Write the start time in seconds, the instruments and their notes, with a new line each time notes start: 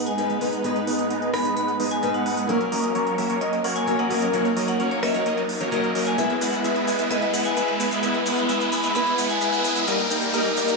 Already playing: steel-string acoustic guitar G#2 G#3 B3 D#4 B4, supersaw synth G#3 B3 D#4 B4 D#5, string section G#3 B3 D#4 B4, riser
0.07 vibraphone G#5, closed hi-hat
0.17 steel-string acoustic guitar G#2 G#3 B3 D#4 B4, closed hi-hat
0.30 supersaw synth G#3 B3 D#4 B4 F#5, closed hi-hat
0.41 steel-string acoustic guitar G#2 G#3 B3 D#4 B4, supersaw synth G#3 B3 D#4 B4 F#5, open hi-hat
0.53 closed hi-hat
0.63 steel-string acoustic guitar G#2 G#3 B3 D#4 B4, supersaw synth G#3 B3 D#4 B4 D#5, closed hi-hat
0.76 closed hi-hat
0.87 supersaw synth G#3 B3 D#4 B4 F#5, open hi-hat
0.99 closed hi-hat
1.10 supersaw synth G#3 B3 D#4 B4 D#5, closed hi-hat
1.22 closed hi-hat
1.34 supersaw synth G#3 B3 D#4 B4 G#5, vibraphone B5, cross-stick, open hi-hat
1.45 supersaw synth G#3 B3 D#4 B4 D#5, closed hi-hat
1.57 supersaw synth G#3 B3 D#4 B4 F#5, vibraphone B5, closed hi-hat
1.68 closed hi-hat
1.80 supersaw synth G#3 B3 D#4 B4 D#5, open hi-hat
1.91 vibraphone G#5, closed hi-hat
2.02 steel-string acoustic guitar G#2 G#3 B3 D#4 B4, closed hi-hat
2.14 supersaw synth G#3 B3 D#4 B4 F#5, vibraphone F#5, closed hi-hat
2.26 supersaw synth G#3 B3 D#4 B4 F#5, open hi-hat
2.37 closed hi-hat
2.48 steel-string acoustic guitar F#3 A#3 C#4 A#4, supersaw synth F#3 A#3 C#4 A#4 C#5, string section F#3 A#3 C#4 A#4, closed hi-hat
2.61 closed hi-hat
2.72 supersaw synth F#3 A#3 C#4 A#4 D#5, open hi-hat
2.84 closed hi-hat
2.95 supersaw synth F#3 A#3 C#4 A#4 C#5, closed hi-hat
3.07 closed hi-hat
3.18 supersaw synth F#3 A#3 C#4 A#4 E5, open hi-hat
3.30 supersaw synth F#3 A#3 C#4 A#4 C#5, closed hi-hat
3.41 supersaw synth F#3 A#3 C#4 A#4 D#5, vibraphone D#5, closed hi-hat
3.53 closed hi-hat
3.64 supersaw synth F#3 A#3 C#4 A#4 C#5, vibraphone F#5, open hi-hat
3.76 vibraphone G#5, closed hi-hat
3.87 steel-string acoustic guitar F#3 A#3 C#4 A#4, closed hi-hat
3.99 supersaw synth F#3 A#3 C#4 A#4 D#5, vibraphone F#5, closed hi-hat
4.10 steel-string acoustic guitar F#3 A#3 C#4 A#4, supersaw synth F#3 A#3 C#4 A#4 D#5, open hi-hat
4.22 closed hi-hat
4.32 steel-string acoustic guitar F#3 A#3 C#4 A#4, supersaw synth F#3 A#3 C#4 A#4 C#5, string section D#4, closed hi-hat
4.45 closed hi-hat
4.57 supersaw synth F#3 A#3 C#4 A#4 D#5, open hi-hat
4.68 vibraphone F#5, closed hi-hat
4.80 supersaw synth F#3 A#3 C#4 A#4 C#5, closed hi-hat
4.91 vibraphone C#5, closed hi-hat
5.03 supersaw synth F#3 A#3 C#4 A#4 E5, vibraphone D#5, cross-stick, open hi-hat
5.14 supersaw synth F#3 A#3 C#4 A#4 C#5, vibraphone D#5, closed hi-hat
5.26 supersaw synth F#3 A#3 C#4 A#4 D#5, closed hi-hat
5.38 closed hi-hat
5.49 open hi-hat
5.60 supersaw synth F#3 A#3 C#4 A#4 C#5, closed hi-hat
5.71 steel-string acoustic guitar F#3 A#3 C#4 A#4, supersaw synth F#3 A#3 C#4 A#4 D#5, closed hi-hat
5.84 closed hi-hat
5.95 supersaw synth F#3 A#3 C#4 A#4 D#5, open hi-hat
6.06 vibraphone G#5, closed hi-hat
6.17 steel-string acoustic guitar G#3 B3 E4 B4, supersaw synth G#3 B3 E4 B4 E5, string section G#3 B3 E4 B4, closed hi-hat, shaker
6.30 closed hi-hat
6.41 supersaw synth G#3 B3 E4 B4 F#5, open hi-hat, shaker
6.53 closed hi-hat, shaker
6.64 supersaw synth G#3 B3 E4 B4 E5, closed hi-hat, shaker
6.76 closed hi-hat
6.87 supersaw synth G#3 B3 E4 B4 G#5, open hi-hat, shaker
6.99 supersaw synth G#3 B3 E4 B4 E5, closed hi-hat, shaker
7.09 steel-string acoustic guitar G#3 B3 E4 B4, supersaw synth G#3 B3 E4 B4 E5, vibraphone D#5, closed hi-hat, shaker
7.22 closed hi-hat
7.34 supersaw synth G#3 B3 E4 B4 F#5, vibraphone F#5, open hi-hat, shaker
7.45 vibraphone G#5, closed hi-hat, shaker
7.57 supersaw synth G#3 B3 E4 B4 E5, closed hi-hat, shaker
7.68 closed hi-hat
7.80 supersaw synth G#3 B3 E4 B4 G#5, open hi-hat, shaker
7.91 supersaw synth G#3 B3 E4 B4 E5, closed hi-hat, shaker
8.02 steel-string acoustic guitar G#3 B3 E4 B4, supersaw synth G#3 B3 E4 B4 E5, closed hi-hat, shaker
8.14 closed hi-hat
8.26 supersaw synth G#3 B3 E4 B4 F#5, open hi-hat, shaker
8.37 closed hi-hat, shaker
8.49 supersaw synth G#3 B3 E4 B4 E5, closed hi-hat, shaker
8.60 closed hi-hat, shaker
8.72 supersaw synth G#3 B3 E4 B4 G#5, vibraphone B5, open hi-hat, shaker
8.84 supersaw synth G#3 B3 E4 B4 E5, closed hi-hat, shaker
8.94 steel-string acoustic guitar G#3 B3 E4 B4, supersaw synth G#3 B3 E4 B4 E5, vibraphone B5, closed hi-hat, shaker
9.07 closed hi-hat
9.18 supersaw synth G#3 B3 E4 B4 F#5, open hi-hat, shaker
9.30 vibraphone G#5, closed hi-hat, shaker
9.41 supersaw synth G#3 B3 E4 B4 E5, closed hi-hat, shaker
9.53 vibraphone F#5, closed hi-hat, shaker
9.64 supersaw synth G#3 B3 E4 B4 G#5, open hi-hat, shaker
9.76 supersaw synth G#3 B3 E4 B4 E5, closed hi-hat, shaker
9.86 steel-string acoustic guitar G3 A#3 D#4 A#4, string section G3 A#3 D#4 A#4, supersaw synth G3 A#3 D#4 A#4 D#5, closed hi-hat, shaker
9.99 closed hi-hat
10.10 supersaw synth G3 A#3 D#4 A#4 G5, open hi-hat, shaker
10.22 closed hi-hat, shaker
10.32 steel-string acoustic guitar G3 A#3 D#4 A#4, supersaw synth G3 A#3 D#4 A#4 D#5, closed hi-hat, shaker
10.45 closed hi-hat
10.57 supersaw synth G3 A#3 D#4 A#4 G5, open hi-hat, shaker
10.68 closed hi-hat, shaker